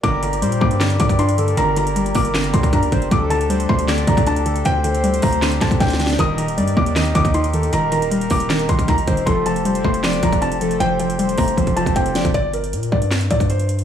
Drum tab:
HH |x-----x--x--x--x-----x--x--x--x--x--x--x--x--x--|x-----x--x--x--x--o--x--x--x--x--x--x--x--x--x--|x-----x--x--x--x-----x--x--x--x--x--x--x--x--x--|x-----x--x--x--x--o--x--x--x--x--x--x--x--x--x--|
CP |------------------------x-----------------------|------------------------x-----------------------|------------------------x-----------------------|------------------------x-----x-----------------|
SD |------------------------o-----------------------|------------------------o-----------------------|------------------------o-----------------------|------------------------o-----o-----o-o-o-o-o-o-|
BD |o-----------------o-----------o--o--------------|------------------o-----------o--o--o-----o-----|o-----------------o-----------o--o--------------|------------------o-----------o--o--o-----------|

HH |x-----x--x--x--x-----x--x--x--x--x--x--x--x--x--|x-----x--x--x--x--o--x--x--x--x--x--x--x--x--x--|x-----x--x--x--x-----x--x--x--x--x--x--x--x--x--|x-----x--x--x--x--o--x--x--x--x--x--x--x--x--x--|
CP |------------------------x-----------------------|------------------------x-----------------------|------------------------x-----------------------|------------------------------------------------|
SD |------------------------o-----------------------|------------------------o-----------------------|------------------------o-----------------------|------------------------------------------o-----|
BD |o-----------------o-----------o--o--------------|------------------o-----------o--o--o-----o-----|o-----------------o-----------o--o--------------|------------------o-----o--o-----o--o--------o--|

HH |x-----x--x--x--x-----x--x--x--x--x--x--x--x--x--|
CP |------------------------x-----------------------|
SD |------------------------o-----------------------|
BD |o-----------------o-----------o--o--------------|